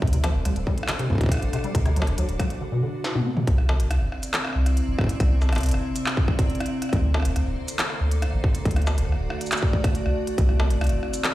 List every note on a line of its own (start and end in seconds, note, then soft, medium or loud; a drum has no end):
0.02 0.36 D2 loud
0.02 0.06 C3 medium
0.02 2.59 D3 medium
0.02 2.59 D4 medium
0.02 2.59 A4 medium
0.02 1.73 C5 medium
0.02 kick loud
0.07 closed hi-hat soft
0.13 0.17 C3 medium
0.13 closed hi-hat medium
0.24 0.30 F3 loud
0.24 cross-stick medium
0.24 closed hi-hat medium
0.24 struck metal medium
0.34 0.41 D1 loud
0.45 0.52 D2 medium
0.45 0.55 G3 medium
0.45 cross-stick medium
0.45 closed hi-hat medium
0.56 0.63 D1 medium
0.56 closed hi-hat soft
0.67 0.73 G3 loud
0.67 kick medium
0.78 closed hi-hat soft
0.83 cross-stick medium
0.88 0.92 D3 medium
0.88 clap loud
0.88 closed hi-hat medium
0.88 struck metal medium
0.99 1.09 C3 medium
0.99 cross-stick medium
0.99 closed hi-hat soft
1.10 1.36 D2 medium
1.10 1.14 G2 medium
1.10 kick soft
1.13 kick medium
1.15 kick medium
1.18 kick medium
1.21 kick loud
1.21 closed hi-hat soft
1.24 kick medium
1.26 kick medium
1.29 kick loud
1.29 cross-stick medium
1.29 closed hi-hat medium
1.34 cross-stick medium
1.37 cross-stick soft
1.40 1.49 A1 medium
1.40 cross-stick soft
1.40 closed hi-hat soft
1.53 1.57 C3 medium
1.53 cross-stick soft
1.53 closed hi-hat medium
1.56 cross-stick soft
1.59 cross-stick soft
1.61 1.74 G3 loud
1.61 cross-stick soft
1.61 closed hi-hat soft
1.75 2.09 D2 loud
1.75 1.79 C3 medium
1.75 2.60 F#4 medium
1.75 kick loud
1.75 closed hi-hat loud
1.86 1.89 C3 medium
1.86 cross-stick medium
1.86 closed hi-hat soft
1.96 2.03 F#3 loud
1.96 closed hi-hat medium
2.02 struck metal medium
2.07 2.14 D1 medium
2.07 cross-stick soft
2.07 closed hi-hat soft
2.18 2.25 D2 medium
2.18 2.27 F#3 medium
2.18 closed hi-hat loud
2.29 2.36 D1 medium
2.29 closed hi-hat soft
2.39 2.46 F#3 loud
2.39 kick medium
2.39 cross-stick medium
2.39 closed hi-hat medium
2.50 closed hi-hat soft
2.61 2.65 D3 medium
2.72 2.81 B2 medium
2.83 2.92 D3 medium
3.04 snare medium
3.15 3.21 B2 loud
3.15 high tom medium
3.26 3.30 B3 medium
3.37 3.43 B2 medium
3.37 mid tom medium
3.47 3.81 C2 loud
3.47 6.89 C3 medium
3.47 6.89 C4 medium
3.47 6.89 E4 medium
3.47 6.89 D5 medium
3.47 kick loud
3.47 closed hi-hat medium
3.58 cross-stick medium
3.69 struck metal medium
3.80 3.87 G1 loud
3.80 closed hi-hat medium
3.91 3.98 C2 medium
3.91 cross-stick medium
3.91 closed hi-hat medium
4.01 4.08 G1 medium
4.12 cross-stick medium
4.23 closed hi-hat medium
4.23 shaker medium
4.34 clap loud
4.34 closed hi-hat medium
4.34 struck metal medium
4.45 cross-stick medium
4.47 cross-stick medium
4.50 cross-stick soft
4.53 4.82 C2 medium
4.53 cross-stick soft
4.66 cross-stick medium
4.66 closed hi-hat medium
4.77 closed hi-hat medium
4.88 4.95 G1 medium
4.99 kick loud
4.99 cross-stick medium
5.01 kick medium
5.04 kick medium
5.07 kick medium
5.07 closed hi-hat medium
5.20 5.54 C2 loud
5.20 kick loud
5.20 cross-stick medium
5.20 closed hi-hat medium
5.42 struck metal soft
5.42 shaker medium
5.49 5.59 G1 loud
5.49 cross-stick medium
5.49 closed hi-hat soft
5.49 struck metal medium
5.55 closed hi-hat soft
5.55 struck metal medium
5.58 closed hi-hat soft
5.61 5.70 C2 loud
5.61 closed hi-hat soft
5.63 closed hi-hat medium
5.66 closed hi-hat medium
5.69 closed hi-hat medium
5.71 5.81 G1 medium
5.71 cross-stick medium
5.71 closed hi-hat medium
5.96 closed hi-hat medium
5.96 shaker medium
6.06 cross-stick medium
6.06 clap loud
6.17 kick loud
6.28 kick medium
6.28 cross-stick medium
6.39 kick loud
6.39 closed hi-hat medium
6.50 closed hi-hat soft
6.55 closed hi-hat soft
6.60 cross-stick medium
6.60 closed hi-hat soft
6.66 closed hi-hat soft
6.82 cross-stick soft
6.82 closed hi-hat medium
6.89 7.27 D2 loud
6.89 10.35 D3 medium
6.89 8.64 A#3 medium
6.89 8.64 A4 medium
6.89 8.64 C5 medium
6.89 kick loud
6.89 cross-stick soft
6.89 closed hi-hat medium
6.96 cross-stick soft
7.14 cross-stick soft
7.14 struck metal medium
7.17 cross-stick soft
7.20 cross-stick medium
7.22 7.32 D1 loud
7.22 cross-stick medium
7.22 closed hi-hat medium
7.36 7.43 D2 medium
7.36 cross-stick medium
7.36 closed hi-hat medium
7.47 7.54 D1 loud
7.68 closed hi-hat medium
7.68 shaker medium
7.79 cross-stick medium
7.79 clap loud
7.79 closed hi-hat medium
7.79 struck metal medium
7.90 cross-stick medium
8.01 8.27 D2 medium
8.11 closed hi-hat medium
8.22 cross-stick medium
8.22 closed hi-hat medium
8.33 8.40 A1 medium
8.44 kick loud
8.44 cross-stick soft
8.55 closed hi-hat medium
8.65 8.99 D2 loud
8.65 10.36 A3 medium
8.65 10.36 F#4 medium
8.65 10.36 D5 medium
8.65 kick loud
8.65 closed hi-hat medium
8.71 closed hi-hat soft
8.76 cross-stick medium
8.76 closed hi-hat soft
8.82 closed hi-hat soft
8.87 struck metal medium
8.87 shaker medium
8.98 9.05 D1 loud
8.98 cross-stick soft
8.98 closed hi-hat medium
9.05 9.16 D2 medium
9.05 cross-stick soft
9.12 cross-stick soft
9.19 9.26 D1 medium
9.30 cross-stick medium
9.41 closed hi-hat medium
9.41 shaker soft
9.46 shaker soft
9.52 cross-stick medium
9.52 clap loud
9.52 closed hi-hat medium
9.52 shaker medium
9.57 shaker medium
9.63 kick loud
9.73 kick medium
9.84 kick loud
9.84 cross-stick medium
9.84 closed hi-hat medium
9.95 closed hi-hat soft
10.06 10.13 C2 medium
10.06 cross-stick medium
10.27 closed hi-hat medium
10.38 10.72 C2 loud
10.38 11.34 C3 medium
10.38 11.34 C4 medium
10.38 11.34 E4 medium
10.38 11.34 D5 medium
10.38 kick loud
10.38 closed hi-hat medium
10.49 cross-stick soft
10.60 struck metal medium
10.70 10.77 G1 loud
10.70 closed hi-hat medium
10.81 10.88 C2 medium
10.81 cross-stick medium
10.81 closed hi-hat soft
10.84 closed hi-hat soft
10.87 closed hi-hat soft
10.89 10.99 G1 medium
10.89 closed hi-hat soft
11.03 cross-stick soft
11.14 closed hi-hat medium
11.14 shaker medium
11.24 clap loud
11.24 closed hi-hat medium
11.24 struck metal medium